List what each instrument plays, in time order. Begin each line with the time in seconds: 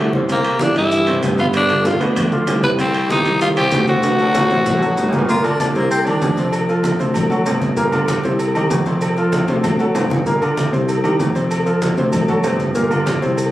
Already playing: tuba C2, tenor saxophone A3
0.13 grand piano C3 C4 C5, low bongo, high conga
0.29 grand piano C3 C4 C5, tenor saxophone A#3, high bongo, high conga, high timbale, maracas
0.44 high bongo, high conga, high timbale, maracas
0.59 grand piano E3 E4 G4, tenor saxophone D4, high bongo, high conga, low timbale, maracas
0.75 tuba G2, tenor saxophone E4, high bongo, high conga, high timbale, maracas
0.91 grand piano E3 E4 G4, high bongo, high conga, maracas
1.07 grand piano C3 C4 C5, high conga, high timbale, maracas
1.22 tuba G2, high bongo, low bongo, high conga, high timbale, low timbale, maracas
1.38 grand piano B2 B3 B4, tenor saxophone F4, high bongo, high conga, maracas
1.53 tenor saxophone D4, high bongo, high conga, high timbale, maracas
1.69 grand piano D3 D4 F4, high bongo, high conga, high timbale, maracas
1.84 grand piano D3 D4 F4, tenor saxophone F4, high bongo, high conga, low timbale, maracas
2.00 tuba D2, grand piano B2 B3 B4, high bongo, high conga, high timbale, maracas
2.16 high bongo, high conga, low conga, high timbale, maracas
2.32 grand piano D3 D4 F4, high conga, maracas
2.46 tuba C2, high bongo, low bongo, high conga, high timbale, low timbale, maracas
2.62 grand piano C3 C4 C5, tenor saxophone B4, high bongo, high conga, maracas
2.78 grand piano C3 C4 C5, tenor saxophone C4, high bongo, high conga, high timbale, maracas
2.94 high bongo, high conga, high timbale, maracas
3.09 grand piano D#3 D#4 G4, tenor saxophone D#4, high bongo, high conga, low timbale, maracas
3.25 tuba C2, high bongo, high conga, high timbale, maracas
3.41 grand piano D#3 D#4 G4, tenor saxophone F4, high bongo, high conga, maracas
3.56 grand piano C3 C4 C5, tenor saxophone G4, high conga, high timbale, maracas
3.71 tuba D2, high bongo, low bongo, high conga, high timbale, low timbale, maracas
3.87 grand piano C3 C4 C5, tenor saxophone F#4, high bongo, high conga, maracas
4.03 high bongo, high conga, high timbale, maracas
4.19 grand piano F#3 F#4 A4, high bongo, high conga, maracas
4.24 high timbale
4.34 grand piano F#3 F#4 A4, high bongo, high conga, low timbale, maracas
4.50 tuba A1, grand piano C3 C4 C5, high bongo, high conga, maracas
4.66 high bongo, high conga, low conga, maracas
4.77 low timbale
4.82 grand piano F#3 F#4 A4, high conga, maracas
4.97 tuba G1, low bongo, high conga, low timbale, maracas
5.08 low timbale
5.13 grand piano A#2 A#3 A#4, low bongo, high conga, maracas
5.19 low timbale
5.29 grand piano A#2 A#3 A#4, baritone saxophone F4, cowbell, high conga, maracas
5.44 grand piano D3 D4 F4, baritone saxophone D4, high conga, low agogo, maracas
5.60 baritone saxophone D4, cowbell, high conga, low timbale, low agogo, maracas
5.74 tuba C2, grand piano C3 C4 C5, baritone saxophone A#3, cowbell, high conga, maracas
5.91 baritone saxophone C4, cowbell, high conga, low agogo, maracas
6.06 grand piano D#3 D4 G4, baritone saxophone D4, high conga, low agogo, maracas
6.22 tuba F2, cowbell, high conga, low timbale, maracas
6.37 grand piano C3 C4 C5, cowbell, low agogo, maracas
6.52 cowbell, low agogo, maracas
6.69 grand piano F3 F4 A4, cowbell, high conga, maracas
6.83 cowbell, high conga, low timbale, low agogo, maracas
6.99 tuba D2, grand piano C3 C4 C5, cowbell, high conga, maracas
7.14 cowbell, high conga, low conga, low agogo, maracas
7.30 grand piano F#3 F#4 A4, high conga, low agogo, maracas
7.46 tuba G1, grand piano C3 C4 C5, cowbell, high conga, low timbale, low agogo, maracas
7.61 cowbell, high conga, maracas
7.77 grand piano A#2 A#3 A#4, cowbell, high conga, maracas
7.92 grand piano D3 D4 F4, high conga, low agogo, maracas
8.08 cowbell, high conga, low timbale, low agogo, maracas
8.23 tuba C2, grand piano C3 C4 C5, cowbell, high conga, maracas
8.39 cowbell, high conga, low agogo, maracas
8.55 grand piano D#3 D#4 G4, high conga, low agogo, maracas
8.70 tuba F2, cowbell, high conga, low timbale, maracas
8.86 grand piano C3 C4 C5, cowbell, low agogo, maracas
9.01 cowbell, high conga, low agogo, maracas
9.17 grand piano F3 F4 A4, cowbell, high conga, maracas
9.32 cowbell, high bongo, high conga, low timbale, low agogo, maracas
9.48 tuba D2, grand piano C3 C4 C5, cowbell, high bongo, high conga, maracas
9.64 cowbell, high bongo, high conga, low conga, low agogo, maracas
9.79 grand piano F#3 F#4 A4, high conga, low agogo, maracas
9.94 tuba G1, grand piano C3 C4 C5, cowbell, low bongo, high conga, low timbale, low agogo, maracas
10.10 cowbell, low bongo, high conga, maracas
10.26 grand piano A#2 A#3 A#4, cowbell, high conga, maracas
10.42 grand piano D3 D4 F4, high conga, low agogo, maracas
10.57 cowbell, high conga, low timbale, low agogo, maracas
10.72 tuba C2, grand piano C3 C4 C5, cowbell, high conga, maracas
10.89 cowbell, high conga, low agogo, maracas
11.04 grand piano D#3 D#4 G4, high conga, low agogo, maracas
11.19 tuba F2, cowbell, high conga, low timbale, maracas
11.35 grand piano C3 C4 C5, cowbell, low agogo, maracas
11.51 cowbell, high conga, low agogo, maracas
11.66 grand piano F3 F4 A4, cowbell, high conga, maracas
11.82 cowbell, high conga, low timbale, low agogo, maracas
11.97 tuba D2, grand piano C3 C4 C5, cowbell, high conga, maracas
12.13 cowbell, high conga, low conga, low agogo, maracas
12.28 grand piano F#3 F#4 A4, high conga, low conga, low agogo, maracas
12.44 tuba G1, grand piano C3 C4 C5, cowbell, high conga, low timbale, low agogo, maracas
12.60 cowbell, high conga, maracas
12.75 grand piano A#2 A#3 A#4, cowbell, high conga, maracas
12.90 grand piano D3 D4 F4, high conga, low agogo, maracas
13.06 cowbell, high conga, low timbale, low agogo, maracas
13.21 tuba C2, grand piano C3 C4 C5, cowbell, high conga, maracas
13.37 cowbell, high conga, low agogo, maracas